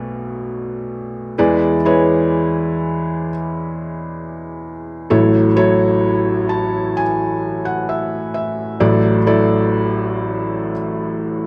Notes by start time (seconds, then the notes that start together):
Already playing: B1 B2 A3 F#4 B4 D5
1.38 E2 E3 G#3 E4 B4 D5
1.85 G#3 E4 B4 C#5
5.10 A1 A2 F#3 E4 A4 C#5
5.56 F#3 E4 A4 C#5
6.49 A5
6.97 G#5
7.65 F#5
7.89 E5
8.34 E5
8.80 A1 A2 F#3 E4 A4 D5
9.27 F#3 E4 A4 D5